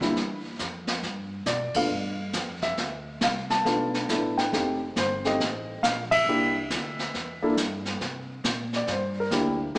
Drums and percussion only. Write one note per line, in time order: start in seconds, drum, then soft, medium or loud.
0.01 kick medium
0.01 snare soft
0.16 brush sweep soft
0.16 kick soft
0.16 snare soft
0.59 kick soft
0.59 snare medium
0.59 hi-hat pedal soft
0.87 snare medium
1.03 brush sweep medium
1.03 kick soft
1.03 snare soft
1.46 kick soft
1.46 snare medium
1.46 hi-hat pedal medium
1.74 kick medium
1.74 ride medium
1.89 brush sweep soft
2.33 kick soft
2.33 snare medium
2.33 hi-hat pedal medium
2.62 kick medium
2.62 snare soft
2.77 brush sweep soft
2.77 kick soft
2.77 snare soft
3.21 kick soft
3.21 snare medium
3.21 hi-hat pedal soft
3.50 snare soft
3.65 brush sweep soft
3.65 kick soft
3.65 snare soft
3.94 snare soft
4.09 kick soft
4.09 snare medium
4.09 hi-hat pedal medium
4.38 snare soft
4.53 brush sweep soft
4.53 kick soft
4.53 snare soft
4.96 kick soft
4.96 snare medium
4.96 hi-hat pedal soft
5.25 snare soft
5.40 brush sweep soft
5.40 kick soft
5.40 snare soft
5.83 kick soft
5.83 snare medium
5.83 hi-hat pedal medium
6.12 kick medium
6.12 ride medium
6.28 brush sweep soft
6.70 kick soft
6.70 snare medium
6.70 hi-hat pedal medium
6.99 snare soft
7.14 brush sweep medium
7.14 kick soft
7.14 snare soft
7.57 kick soft
7.57 snare medium
7.57 hi-hat pedal medium
7.85 snare soft
8.01 brush sweep soft
8.01 kick soft
8.01 snare soft
8.44 kick soft
8.44 snare medium
8.44 hi-hat pedal medium
8.73 snare soft
8.87 brush sweep medium
8.87 kick soft
8.87 snare soft
9.31 kick soft
9.31 snare medium
9.31 hi-hat pedal soft
9.75 brush sweep medium
9.75 kick soft
9.75 snare soft